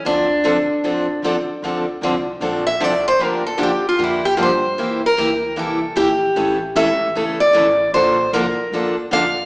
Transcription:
X:1
M:4/4
L:1/8
Q:"Swing" 1/4=152
K:Dm
V:1 name="Steel-string acoustic guitar"
D6 z2 | z4 z e d c | B A G F E G c2- | c B3 A2 G2- |
G z e3 d3 | c2 B3 z f2 |]
V:2 name="Steel-string acoustic guitar"
[D,F,CDA] z [D,F,CDA] z [D,F,CDA] z [D,F,CDA] z | [D,F,CDA] z [D,F,CDA] z [D,F,CDA] z [D,F,CDA] z | [D,F,B,DG] z [D,F,B,DG] z [D,F,B,DG] z [D,F,B,DG] z | [E,B,EG] z [E,B,EG] z [E,B,EG] z [E,B,EG] z |
[E,A,^CEA] z [E,A,CEA] z [E,A,CEA] z [E,A,CEA] z | [D,F,B,DA] z [D,F,B,DA] z [D,F,B,DA] z [D,F,B,DA] z |]
V:3 name="Steel-string acoustic guitar"
[D,F,CDA] z [D,F,CDA] z [D,F,CDA] z [D,F,CDA] z | [D,F,CDA] z [D,F,CDA] z [D,F,CDA] z [D,F,CDA] z | [D,F,B,DG] z [D,F,B,DG] z [D,F,B,DG] z [D,F,B,DG] z | [E,B,EG] z [E,B,EG] z [E,B,EG] z [E,B,EG] z |
[^C,E,A,^CA] z [C,E,A,CA] z [C,E,A,CA] z [C,E,A,CA] z | [D,F,B,DA] z [D,F,B,DA] z [D,F,B,DA] z [D,F,B,DA] z |]
V:4 name="Upright bass" clef=bass
D,,4 A,,,4 | D,,2 C,,2 B,,,2 C,,2 | D,,2 E,,2 F,,2 G,,2 | E,,2 D,,2 C,,2 B,,,2 |
A,,,2 ^G,,,2 =G,,,2 A,,,2 | B,,,2 C,, z D,,2 F,,2 |]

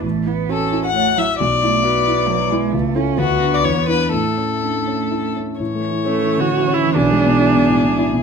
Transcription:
X:1
M:3/4
L:1/16
Q:1/4=133
K:A
V:1 name="Violin"
z4 A3 f3 e2 | d8- d2 z2 | z4 F3 d c2 B2 | A8- A2 z2 |
c12 | G12 |]
V:2 name="Viola"
z12 | z12 | z12 | z12 |
z4 A,3 F3 E2 | D8- D2 z2 |]
V:3 name="Grand piano"
A,,,2 E2 F2 E2 c2 E2 | B,,,2 E2 F2 E2 B2 E2 | C,,2 [EA]2 D,,2 [DF]2 E,,2 [DE]2 | A,,2 C2 D2 C2 E2 C2 |
(3A,,2 A,2 E,2 (3C2 E,2 D,2 (3E,2 C2 E,2 | (3B,,,2 G,2 B,,2 (3E2 B,,2 A,,2 (3B,,2 E2 B,,2 |]
V:4 name="Cello"
A,2 B,2 C4 A,2 F,2 | G,2 A,2 B,4 F,2 G,2 | A,2 C2 B,8 | A,8- A,2 z2 |
E,12- | E,12 |]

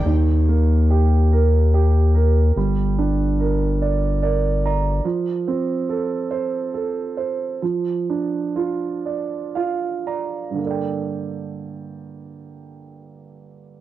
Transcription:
X:1
M:6/8
L:1/8
Q:3/8=47
K:Gm
V:1 name="Grand piano"
E, B, G B G B | G, D B d [Bd] [db] | F, C A c A c | F, D F d [Ff] [db] |
[G,,D,B,Adg]6 |]
V:2 name="Analog synth bass" clef=bass
E,,6 | G,,,6 | z6 | z6 |
z6 |]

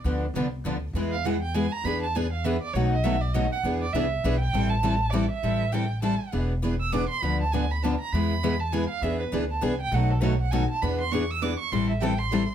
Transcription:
X:1
M:3/4
L:1/8
Q:"Swing" 1/4=201
K:Ephr
V:1 name="Violin"
z6 | z f ^f g ^g _b | b a ^g f e d | ^c ^d e =d ^d ^f |
z d e3 g- | g a3 d e- | e2 g2 a2 | z3 e' d' c' |
b a ^g b a _b | b3 a ^g f | e B z a ^g =g | ^f A ^c f ^g a |
b c' ^c' e' d' c' | c' e g c'2 z |]
V:2 name="Steel-string acoustic guitar"
[D,F,B,D] z [D,F,B,D] z [D,F,B,D] z | [E,^G,B,E^G] z [E,G,B,EG] z [E,G,B,EG] z | [E,B,D^G] z [E,B,DG] z [E,B,DG] z | [B,,^F,A,^D^F] z [B,,F,A,DF] z [B,,F,A,DF] z |
[E,B,D^G] z [E,B,DG] z [E,B,DG] z | [E,G,CEA] z [E,G,CEA] z [E,G,CEA] z | [E,G,CEA] z [E,G,CEA] z [E,G,CEA] z | [E,B,D^G] z [E,B,DG] z [E,B,DG] z |
[D,F,B,D] z [D,F,B,D] z [D,F,B,D] z | [E,^G,B,E^G] z [E,G,B,EG] z [E,G,B,EG] z | [E,B,D^G] z [E,B,DG] z [E,B,DG] z | [B,,^F,A,^D^F] z [B,,F,A,DF] z [B,,F,A,DF] z |
[E,B,D^G] z [E,B,DG] z [E,B,DG] z | [E,G,CEA] z [E,G,CEA] z [E,G,CEA] z |]
V:3 name="Steel-string acoustic guitar"
[D,F,B,D] z [D,F,B,D] z [D,F,B,D] z | [E,^G,B,E^G] z [E,G,B,EG] z [E,G,B,EG] z | [E,B,D^GB] z [E,B,DGB] z [E,B,DGB] z | [B,,^D,^F,B,^DA] z [B,,D,F,B,DA] z [B,,D,F,B,DA] z |
[E,B,D^GB] z [E,B,DGB] z [E,B,DGB] z | [E,G,CEA] z [E,G,CEA] z [E,G,CEA] z | [E,G,CEA] z [E,G,CEA] z [E,G,CEA] z | [E,B,D^GB] z [E,B,DGB] z [E,B,DGB] z |
[D,F,B,D] z [D,F,B,D] z [D,F,B,D] z | [E,^G,B,E^G] z [E,G,B,EG] z [E,G,B,EG] z | [E,B,D^GB] z [E,B,DGB] z [E,B,DGB] z | [B,,^D,^F,B,^DA] z [B,,D,F,B,DA] z [B,,D,F,B,DA] z |
[E,B,D^GB] z [E,B,DGB] z [E,B,DGB] z | [E,G,CEA] z [E,G,CEA] z [E,G,CEA] z |]
V:4 name="Upright bass" clef=bass
D,,2 C,,2 D,,2 | E,,6 | E,,6 | B,,,6 |
E,,2 C,,2 B,,,2 | A,,,6 | A,,,6 | E,,,6 |
D,,6 | E,,6 | E,,2 D,,2 C,,2 | B,,,6 |
E,,6 | A,,,6 |]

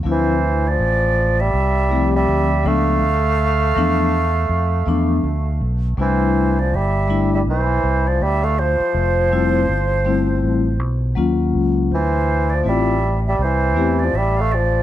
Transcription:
X:1
M:4/4
L:1/16
Q:"Swing 16ths" 1/4=81
K:C
V:1 name="Flute"
c3 d4 e4 e3 f2- | f12- f2 z2 | c3 d e3 e c3 d e f c2- | c8- c2 z6 |
c3 d e3 e c3 d e f d2 |]
V:2 name="Vibraphone"
[F,A,CE]2 z8 [F,A,CEG]2 z2 [F,A,B,D]2 | z4 [F,A,B,D]2 z4 [F,A,B,D]2 z4 | [G,A,DE]2 z4 [G,A,DE]2 z8 | z2 [G,A,CE]2 z2 [G,A,CE]2 z4 [_G,_B,_DF]4 |
z4 [A,CEF]2 z4 [A,CEG]2 z4 |]
V:3 name="Bassoon" clef=bass
E,3 F,4 G,4 G,3 A,2- | A,12- A,2 z2 | E,3 F, G,3 G, E,3 F, G, A, F,2- | F,8- F,2 z6 |
E,3 F, G,3 G, E,3 F, G, A, F,2 |]
V:4 name="Fingered electric bass" clef=bass
D,,4 A,,,4 C,,4 D,,2 _D,,2 | D,,4 E,,4 F,,2 E,,2 D,,2 B,,,2 | C,,4 G,,,4 B,,,2 C,,2 D,,3 z | F,,,4 G,,,4 A,,,2 B,,,2 _E,,2 _D,,2 |
D,,4 A,,,4 C,,2 E,,2 A,,,4 |]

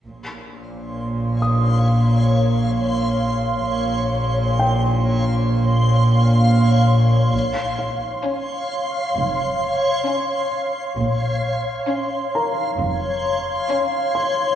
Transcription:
X:1
M:4/4
L:1/8
Q:1/4=66
K:Bbdor
V:1 name="Grand piano"
z3 e'4- e'- | e' z g6 | z f6 z | z3 [Bb]4 c' |]
V:2 name="Synth texture"
[dfc']8 | [dfc']8 | [dfc']8 | [dfc']8 |]
V:3 name="Violin section"
z8 | z8 | z2 D2 z2 D2 | z2 D2 z2 D2 |]
V:4 name="Cello section" clef=bass
B,,8 | B,,8 | B,,2 z2 F,,2 z2 | B,,2 z2 F,,2 z2 |]
V:5 name="Double bass section" clef=bass
B,,,8 | B,,,8 | B,,,2 z2 F,,,2 z2 | B,,,2 z2 F,,,2 z2 |]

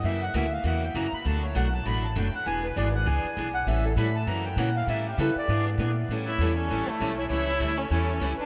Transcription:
X:1
M:4/4
L:1/8
Q:"Swing" 1/4=198
K:Amix
V:1 name="Accordion"
e f e =f ^f g ^a b | a c f a b a g f | ^g B d f g3 f | e A b a ^a g f =f |
e G B d2 z3 | z c2 A2 E2 c | c3 A A2 z B |]
V:2 name="Violin"
z8 | z8 | z8 | z8 |
z8 | z E2 C2 A,2 E | E3 C C2 z D |]
V:3 name="Steel-string acoustic guitar"
[C,E,^A,CF] z [C,E,A,CF] z [C,E,A,CF] z [C,E,A,CF] z | [B,,F,A,DF] z [B,,F,A,DF] z [B,,F,A,DF] z [B,,F,A,DF] z | [E,B,D^G] z [E,B,DG] z [E,B,DG] z [E,B,DG] z | [E,G,CEA] z [E,G,CEA] z [C,E,^A,CF] z [C,E,A,CF] z |
[E,G,CEA] z [E,G,CEA] z [E,B,D^G] z [E,B,DG] z | [E,G,CEA] z [E,G,CEA] z [E,G,CEA] z [E,G,CEA] z | [E,G,CEA] z [E,G,CEA] z [E,G,CEA] z [E,G,CEA] z |]
V:4 name="Upright bass" clef=bass
F,,2 D,,2 E,,2 F,, z | D,,2 B,,,2 A,,,2 F,,, z | E,,,2 ^G,,,2 C,, z B,,,2 | A,,,2 A,,2 F,,2 ^A,,2 |
A,,2 C, z ^G,,2 _B,,2 | A,,2 E,,2 A,,, z B,,,2 | C,,2 D,,2 E,,2 C,, z |]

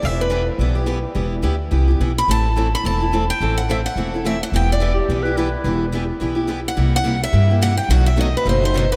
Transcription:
X:1
M:4/4
L:1/8
Q:"Swing" 1/4=214
K:Em
V:1 name="Steel-string acoustic guitar"
e B2 z4 z | z6 z b | a3 b a3 g- | g f e f3 e f |
g d2 z4 z | z6 z f- | f f2 e3 f g | f e ^d B c c c B |]
V:2 name="Clarinet"
z8 | z8 | z8 | z8 |
z3 G2 B E2- | E2 z6 | z8 | z8 |]
V:3 name="Steel-string acoustic guitar"
[E,B,EG] z [E,B,EG] z [E,B,EG] [B,EG] [E,B,EG] z | [E,B,EG] z [E,B,EG] z [E,B,EG] [B,EG] [E,B,EG] z | [E,A,CEA] z [E,A,CEA] z [E,A,CEA] [CEA] [E,A,CEA] z | [E,A,CEA] z [E,A,CEA] z [E,A,CEA] [CEA] [E,A,CEA] z |
[E,B,EG] z [E,B,EG] z [E,B,EG] [B,EG] [E,B,EG] z | [E,B,EG] z [E,B,EG] z [E,B,EG] [B,EG] [E,B,EG] z | [C,G,_B,EG] z [C,G,B,EG] z [C,G,B,EG] [B,EG] [C,G,B,EG] z | [B,,F,A,^DF] z [B,,F,A,DF] z [B,,F,A,DF] [A,DF] [B,,F,A,DF] z |]
V:4 name="Steel-string acoustic guitar"
[E,B,EGB] z [E,B,EGB] z [E,B,EGB] z [E,B,EGB] z | [E,B,EGB] z [E,B,EGB] z [E,B,EGB] z [E,B,EGB] z | [E,A,CEA] z [E,A,CEA] z [E,A,CEA] z [E,A,CEA] z | [E,A,CEA] z [E,A,CEA] z [E,A,CEA] z [E,A,CEA] z |
[E,B,EGB] z [E,B,EGB] z [E,B,EGB] z [E,B,EGB] z | [E,B,EGB] z [E,B,EGB] z [E,B,EGB] z [E,B,EGB] z | [C,G,_B,EG] z [C,G,B,EG] z [C,G,B,EG] z [C,G,B,EG] z | [B,,^D,F,B,^DA] z [B,,D,F,B,DA] z [B,,D,F,B,DA] z [B,,D,F,B,DA] z |]
V:5 name="Upright bass" clef=bass
E,,,4 B,,,4 | E,,,2 D,,2 C,,2 B,,,2 | A,,,4 E,,,4 | A,,,4 E,,,4 |
E,,,4 B,,,4 | E,,,4 B,,,4 | C,,4 G,,4 | B,,,4 F,,,4 |]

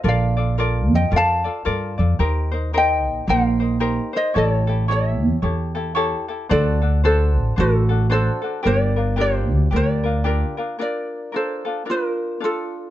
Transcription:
X:1
M:4/4
L:1/8
Q:"Swing" 1/4=112
K:Gm
V:1 name="Ukulele"
[df]3 [eg] [fa]3 z | z2 [eg]2 [cf]3 [ce] | [A^c]2 [c=e]4- [ce] z | [Ad]2 [Ac]2 [^FA]2 [Ac]2 |
[Bd]2 [Gc]2 [Bd]3 z | [K:Bb] [Bd]2 [Ac]2 [FB]2 [FA]2 |]
V:2 name="Ukulele"
[FABd] [FAd] [FABd]2 [FABd] [FAd] [FABd] [FAd] | [EGBc] [EBc] [EGBc]2 [EGBc] [EBc] [EGBc] [EBc] | [=EGA^c] [EGA] [EGAc]2 [EGAc] [EGA] [EGAc] [EGA] | [D^FAc] [DFA] [DFAc]2 [DFAc] [DFA] [DFAc] [DFA] |
[DFGB] [DFB] [DFGB]2 [DFGB] [DFB] [DFGB] [DFB] | [K:Bb] [DFB]2 [DFAB] [DFA] [DFB]2 [DFA]2 |]
V:3 name="Upright bass" clef=bass
B,,,3 F,, F,,2 G,, F,, | E,,3 B,,, B,,,4 | A,,,3 =E,, E,,4 | D,,3 A,,, A,,,4 |
G,,,3 D,, D,,4 | [K:Bb] z8 |]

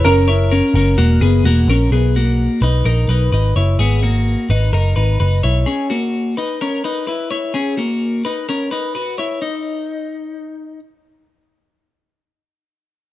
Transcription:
X:1
M:4/4
L:1/16
Q:1/4=128
K:B
V:1 name="Upright piano"
A12 z4 | z16 | z16 | z16 |
z16 | z16 | z16 |]
V:2 name="Clean electric guitar"
[CA]2 [Ec]2 [CA]2 [CA]2 [A,F]2 [B,G]2 [A,F]2 [CA]2 | [B,G]2 [A,F]4 [DB]2 [DA]2 [DB]2 [DB]2 [Ec]2 | [B,G]2 [A,F]4 [DB]2 [DA]2 [DB]2 [DB]2 [Ec]2 | [CG]2 [A,F]4 [DB]2 [CA]2 [DB]2 [EB]2 [Ec]2 |
[CG]2 [A,F]4 [DB]2 [CA]2 [DB]2 [FB]2 [Ec]2 | D12 z4 | z16 |]
V:3 name="Picked electric bass" clef=bass
F,,,4- F,,, z F,,,2 E,,,2 F,,,2 E,,,2 A,,,2 | B,,,4- B,,, z B,,,2 A,,,2 B,,,2 G,,,2 F,,,2 | G,,,4- G,,, z G,,,2 F,,,2 G,,,2 F,,,2 B,,,2 | z16 |
z16 | z16 | z16 |]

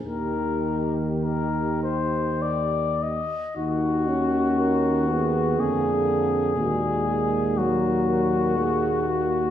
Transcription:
X:1
M:3/4
L:1/8
Q:1/4=59
K:Eb
V:1 name="Cornet"
B2 B c d e | [K:Ebm] G4 A2- | A2 G4 |]
V:2 name="French horn section"
G4- G z | [K:Ebm] G2 B A3 | G A B B A G |]
V:3 name="Euphonium"
E,4 z2 | [K:Ebm] E D2 C B,2 | A,2 G,2 B,2 |]
V:4 name="Trombone" clef=bass
E,4- E, z | [K:Ebm] E,4 =D,2 | B,,6 |]
V:5 name="Tuba" clef=bass
E,,4- E,, z | [K:Ebm] E,,4 F,,2 | E,,6 |]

